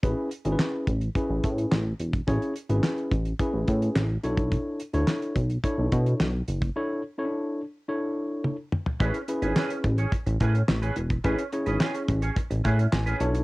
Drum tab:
HH |x-xx--xxx-xx--xx|xxxx-xxxx-xx--xx|x-xx-xxxx-xx--xx|----------------|
CP |----x-------x---|----x-------x---|----x-------x---|----------------|
SD |----o-------o---|----o-------o---|----o-------o---|----------------|
T1 |----------------|----------------|----------------|------------o---|
T2 |----------------|----------------|----------------|--------------o-|
FT |----------------|----------------|----------------|---------------o|
BD |o-----o-o-o----o|o-----o-o-o----o|o-----o-o-o----o|----------------|

HH |xxxx-xxxxxxx-xxx|xxxx-xxxxxxx-xxx|
CP |----x-------x---|----x-------x---|
SD |----o-------o---|----o-------o---|
T1 |----------------|----------------|
T2 |----------------|----------------|
FT |----------------|----------------|
BD |o-----o-o-o----o|o-----o-o-o-----|